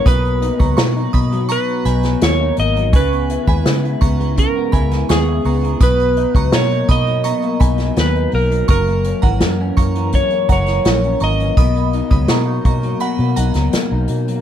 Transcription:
<<
  \new Staff \with { instrumentName = "Synth bell" } { \time 4/4 \key b \major \tempo 4 = 83 <b'' dis'''>8 r16 <ais'' cis'''>16 <ais'' cis'''>8 <b'' dis'''>16 r16 <ais'' cis'''>8 <gis'' b''>16 r4 r16 | <gis'' cis'''>16 r8 <gis'' b''>16 r8 <ais'' cis'''>8. r16 <gis'' b''>16 r16 <gis'' cis'''>16 r16 <ais'' cis'''>16 r16 | <b'' dis'''>8 r16 <ais'' cis'''>16 <ais'' cis'''>8 <b'' dis'''>16 r16 <ais'' cis'''>8 <gis'' b''>16 r4 r16 | <ais'' cis'''>16 r8 <fis'' ais''>16 r8 <ais'' cis'''>8. r16 <fis'' ais''>16 r16 <ais'' cis'''>16 r16 <ais'' cis'''>16 r16 |
<b'' dis'''>8 r16 <b'' dis'''>16 <ais'' cis'''>8 <ais'' cis'''>16 r16 <fis'' b''>8 <fis'' ais''>16 r4 r16 | }
  \new Staff \with { instrumentName = "Electric slide guitar" } { \time 4/4 \key b \major b'2 b'4 cis''8 dis''8 | b'2 ais'4 gis'4 | b'4 cis''8 dis''4. b'8 ais'8 | ais'2 cis''8 cis''4 dis''8~ |
dis''2. r4 | }
  \new Staff \with { instrumentName = "Clean electric guitar" } { \time 4/4 \key b \major b,8 dis'16 fis8 dis'8 fis16 b,8 dis'16 fis16 ais16 dis'16 ais16 fis16 | cis16 b16 e'16 gis16 b16 e'16 b16 gis16 cis16 b16 e'16 gis16 b16 e'16 b16 gis16 | b,8 dis'16 fis16 ais16 dis'16 ais16 fis16 b,16 ais16 dis'16 fis8 dis'16 ais16 fis16 | fis,16 ais16 cis'16 e16 ais16 cis'16 ais16 e16 fis,16 ais16 cis'16 e16 ais16 cis'16 ais16 e16 |
b,16 ais16 dis'16 fis16 ais16 dis'16 ais16 fis16 b,16 ais16 dis'16 fis16 ais16 dis'16 ais16 fis16 | }
  \new Staff \with { instrumentName = "Fingered electric bass" } { \clef bass \time 4/4 \key b \major b,,8. cis,16 b,8 b,8. r16 b,,8 dis,8 gis,,8 | cis,8. dis,16 cis8 cis,8. r16 cis,8 dis,8 cis,8 | b,,8. cis,16 b,8 b,8. r16 b,,8 dis,8 b,,8 | fis,,8. gis,,16 fis,8 fis,8. r16 fis,,8 ais,,8 gis,,8 |
b,,8. cis,16 b,8 b,8 r16 b,16 b,,16 cis,16 r16 b,,16 b,8 | }
  \new DrumStaff \with { instrumentName = "Drums" } \drummode { \time 4/4 <hh bd>16 hh16 hh16 <hh bd>16 <hh sn>16 hh16 <hh bd>16 hh16 hh8 hh16 <hh sn>16 <hh sn>8 hh16 hh16 | <hh bd>16 hh16 hh16 <hh bd>16 <hh sn>16 hh16 <hh bd>16 hh16 <hh bd>8 <hh bd>16 <hh sn>16 <hh sn>8 hho16 hh16 | <hh bd>16 hh16 hh16 <hh bd>16 <hh sn>16 hh16 <hh bd>16 hh16 hh16 hh16 <hh bd>16 <hh sn>16 <hh sn>16 hh16 hho16 hh16 | <hh bd>16 hh16 hh16 <hh bd>16 <hh sn>8 <hh bd>16 hh16 <hh bd>16 hh16 <hh bd>16 <hh sn>16 <hh sn>16 hh16 hh16 hh16 |
<hh bd>16 hh16 hh16 <hh bd>16 <hh sn>8 <hh bd>16 hh16 hh16 hh16 hh16 <hh sn>16 <hh sn>8 hh16 hh16 | }
>>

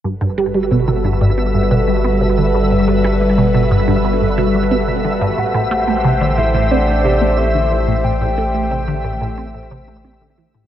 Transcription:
<<
  \new Staff \with { instrumentName = "Soft synth lead" } { \time 4/4 \key g \major \tempo 4 = 90 r1 | r1 | fis''4. e''8 d''4 e''4 | g''2. r4 | }
  \new Staff \with { instrumentName = "Synth texture" } { \time 4/4 \key g \major e''1~ | e''1~ | e''1~ | e''1 | }
  \new Staff \with { instrumentName = "Analog synth pad" } { \time 4/4 \key g \major <g fis' a' b'>1~ | <g fis' a' b'>1 | <a g' c''>1~ | <a g' c''>1 | }
  \new Staff \with { instrumentName = "Synth arpeggio sound" } { \clef bass \time 4/4 \key g \major g,16 g,16 g16 g16 b,16 b,16 g,16 g,16 b16 g,16 b,16 g16 b16 b,16 d16 g,16 | g,16 g,16 g16 g16 b,16 b,16 g,16 g,16 b16 g,16 b,16 g16 b16 b,16 d16 g,16 | a,16 a,16 a16 a16 c16 d16 a,16 a,16 c'16 a,16 c16 a16 c'16 d16 e16 a,16 | a,16 a,16 a16 a16 c16 d16 a,16 a,16 c'16 a,16 c16 a16 c'16 d16 e16 a,16 | }
  \new Staff \with { instrumentName = "Sub bass" } { \clef bass \time 4/4 \key g \major g,,1~ | g,,1 | a,,1~ | a,,1 | }
>>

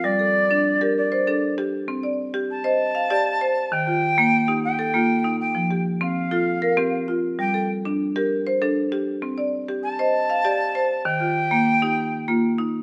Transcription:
<<
  \new Staff \with { instrumentName = "Flute" } { \time 12/8 \key c \dorian \tempo 4. = 131 d''2. d''2 r4 | r2 a''1 | g''2. g''2~ g''8 g''8~ | g''4 r8 f''2.~ f''8 r4 |
g''4 r1 r4 | r2 a''1 | g''1~ g''4 r4 | }
  \new Staff \with { instrumentName = "Marimba" } { \time 12/8 \key c \dorian << { r8 a'4. r8 bes'4 c''8 a'4. r8 | r8 d''4. r8 ees''4 f''8 d''4. r8 | r8 f'4. r8 g'4 a'8 f'4. r8 | r8 g'4. r8 a'4 bes'8 g'4. r8 |
r8 a'4. r8 bes'4 c''8 a'4. r8 | r8 d''4. r8 ees''4 f''8 d''4. r8 | r8 f'4. r8 g'4. f'4. r8 | } \\ { g4 r8 d'4 g'4 r8 d'4 g'4 | c'4 r8 g'4 c''4 r8 g'4 c''4 | ees4 r8 bes4 ees'4 r8 bes4 ees'4 | f4 r8 c'4 f'4 r8 c'4 f'4 |
g4 r8 d'4 g'4 r8 d'4 g'4 | c'4 r8 g'4 c''4 r8 g'4 c''4 | ees4 r8 bes4 ees'4 r8 bes4 ees'4 | } >> }
>>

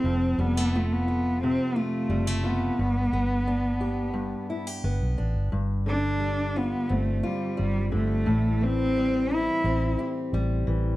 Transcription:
<<
  \new Staff \with { instrumentName = "Cello" } { \time 4/4 \key g \mixolydian \tempo 4 = 88 c'8 b8 a16 b8. c'8 a4 b8~ | b2. r4 | r8 d'4 b8 a8 g8 g8 a8~ | a8 c'4 e'4 r4. | }
  \new Staff \with { instrumentName = "Steel-string acoustic guitar" } { \time 4/4 \key g \mixolydian << { r8 g16 a16 f'8 f'4 f'8 g16 a16 f'8 | r8 b8 d'8 g'4 e'16 g'16 b8 d'8 | r4 g8 f'8 c'8 f'8 g4~ | g4 g8 c'8 c'8 g'8 g4 | } \\ { f,2 c2 | g,2 g,2 | g,8 d2. d8 | a,8 e2. e8 | } >> }
  \new Staff \with { instrumentName = "Fingered electric bass" } { \clef bass \time 4/4 \key g \mixolydian f,,8 f,,2 r8 fis,,4 | g,,8 g,,2 r8 g,,16 b,,16 a,,16 g,,16 | g,,2 g,,8 r8 g,,8 g,,8 | a,,2 a,,8 r8 a,,8 a,,8 | }
>>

